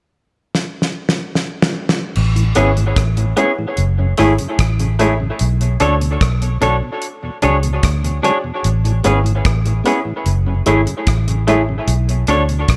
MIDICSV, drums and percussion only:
0, 0, Header, 1, 2, 480
1, 0, Start_track
1, 0, Key_signature, 3, "major"
1, 0, Tempo, 810811
1, 1278, Time_signature, 4, 2, 24, 8
1, 7557, End_track
2, 0, Start_track
2, 0, Title_t, "Drums"
2, 324, Note_on_c, 9, 38, 53
2, 383, Note_off_c, 9, 38, 0
2, 485, Note_on_c, 9, 38, 57
2, 544, Note_off_c, 9, 38, 0
2, 644, Note_on_c, 9, 38, 71
2, 703, Note_off_c, 9, 38, 0
2, 802, Note_on_c, 9, 38, 68
2, 861, Note_off_c, 9, 38, 0
2, 962, Note_on_c, 9, 38, 103
2, 1021, Note_off_c, 9, 38, 0
2, 1120, Note_on_c, 9, 38, 96
2, 1179, Note_off_c, 9, 38, 0
2, 1276, Note_on_c, 9, 49, 70
2, 1335, Note_off_c, 9, 49, 0
2, 1398, Note_on_c, 9, 42, 52
2, 1458, Note_off_c, 9, 42, 0
2, 1510, Note_on_c, 9, 42, 81
2, 1569, Note_off_c, 9, 42, 0
2, 1639, Note_on_c, 9, 42, 50
2, 1698, Note_off_c, 9, 42, 0
2, 1755, Note_on_c, 9, 36, 104
2, 1755, Note_on_c, 9, 42, 78
2, 1763, Note_on_c, 9, 37, 104
2, 1814, Note_off_c, 9, 36, 0
2, 1814, Note_off_c, 9, 42, 0
2, 1822, Note_off_c, 9, 37, 0
2, 1877, Note_on_c, 9, 42, 52
2, 1936, Note_off_c, 9, 42, 0
2, 1994, Note_on_c, 9, 42, 76
2, 2054, Note_off_c, 9, 42, 0
2, 2232, Note_on_c, 9, 42, 66
2, 2291, Note_off_c, 9, 42, 0
2, 2471, Note_on_c, 9, 42, 72
2, 2479, Note_on_c, 9, 37, 59
2, 2531, Note_off_c, 9, 42, 0
2, 2538, Note_off_c, 9, 37, 0
2, 2596, Note_on_c, 9, 42, 58
2, 2655, Note_off_c, 9, 42, 0
2, 2716, Note_on_c, 9, 42, 103
2, 2717, Note_on_c, 9, 36, 103
2, 2725, Note_on_c, 9, 37, 105
2, 2775, Note_off_c, 9, 42, 0
2, 2776, Note_off_c, 9, 36, 0
2, 2785, Note_off_c, 9, 37, 0
2, 2839, Note_on_c, 9, 42, 59
2, 2898, Note_off_c, 9, 42, 0
2, 2957, Note_on_c, 9, 42, 77
2, 3016, Note_off_c, 9, 42, 0
2, 3193, Note_on_c, 9, 42, 85
2, 3252, Note_off_c, 9, 42, 0
2, 3320, Note_on_c, 9, 42, 46
2, 3380, Note_off_c, 9, 42, 0
2, 3433, Note_on_c, 9, 42, 73
2, 3493, Note_off_c, 9, 42, 0
2, 3560, Note_on_c, 9, 42, 48
2, 3620, Note_off_c, 9, 42, 0
2, 3677, Note_on_c, 9, 36, 101
2, 3677, Note_on_c, 9, 42, 80
2, 3685, Note_on_c, 9, 37, 122
2, 3736, Note_off_c, 9, 36, 0
2, 3736, Note_off_c, 9, 42, 0
2, 3744, Note_off_c, 9, 37, 0
2, 3800, Note_on_c, 9, 42, 52
2, 3859, Note_off_c, 9, 42, 0
2, 3917, Note_on_c, 9, 42, 83
2, 3976, Note_off_c, 9, 42, 0
2, 4154, Note_on_c, 9, 42, 76
2, 4213, Note_off_c, 9, 42, 0
2, 4394, Note_on_c, 9, 42, 62
2, 4453, Note_off_c, 9, 42, 0
2, 4518, Note_on_c, 9, 42, 58
2, 4577, Note_off_c, 9, 42, 0
2, 4636, Note_on_c, 9, 42, 101
2, 4638, Note_on_c, 9, 36, 100
2, 4645, Note_on_c, 9, 37, 101
2, 4695, Note_off_c, 9, 42, 0
2, 4697, Note_off_c, 9, 36, 0
2, 4704, Note_off_c, 9, 37, 0
2, 4762, Note_on_c, 9, 42, 61
2, 4821, Note_off_c, 9, 42, 0
2, 4881, Note_on_c, 9, 42, 74
2, 4940, Note_off_c, 9, 42, 0
2, 5117, Note_on_c, 9, 42, 96
2, 5176, Note_off_c, 9, 42, 0
2, 5240, Note_on_c, 9, 42, 51
2, 5299, Note_off_c, 9, 42, 0
2, 5353, Note_on_c, 9, 42, 86
2, 5412, Note_off_c, 9, 42, 0
2, 5482, Note_on_c, 9, 42, 49
2, 5541, Note_off_c, 9, 42, 0
2, 5594, Note_on_c, 9, 42, 82
2, 5595, Note_on_c, 9, 36, 115
2, 5602, Note_on_c, 9, 37, 118
2, 5653, Note_off_c, 9, 42, 0
2, 5654, Note_off_c, 9, 36, 0
2, 5661, Note_off_c, 9, 37, 0
2, 5716, Note_on_c, 9, 42, 49
2, 5775, Note_off_c, 9, 42, 0
2, 5834, Note_on_c, 9, 42, 73
2, 5894, Note_off_c, 9, 42, 0
2, 6073, Note_on_c, 9, 42, 68
2, 6132, Note_off_c, 9, 42, 0
2, 6311, Note_on_c, 9, 42, 66
2, 6370, Note_off_c, 9, 42, 0
2, 6435, Note_on_c, 9, 42, 60
2, 6494, Note_off_c, 9, 42, 0
2, 6552, Note_on_c, 9, 42, 107
2, 6554, Note_on_c, 9, 36, 98
2, 6561, Note_on_c, 9, 37, 101
2, 6611, Note_off_c, 9, 42, 0
2, 6613, Note_off_c, 9, 36, 0
2, 6621, Note_off_c, 9, 37, 0
2, 6677, Note_on_c, 9, 42, 59
2, 6736, Note_off_c, 9, 42, 0
2, 6795, Note_on_c, 9, 42, 71
2, 6854, Note_off_c, 9, 42, 0
2, 7031, Note_on_c, 9, 42, 97
2, 7090, Note_off_c, 9, 42, 0
2, 7156, Note_on_c, 9, 42, 47
2, 7216, Note_off_c, 9, 42, 0
2, 7265, Note_on_c, 9, 42, 76
2, 7324, Note_off_c, 9, 42, 0
2, 7393, Note_on_c, 9, 42, 50
2, 7453, Note_off_c, 9, 42, 0
2, 7509, Note_on_c, 9, 42, 89
2, 7510, Note_on_c, 9, 36, 105
2, 7517, Note_on_c, 9, 37, 106
2, 7557, Note_off_c, 9, 36, 0
2, 7557, Note_off_c, 9, 37, 0
2, 7557, Note_off_c, 9, 42, 0
2, 7557, End_track
0, 0, End_of_file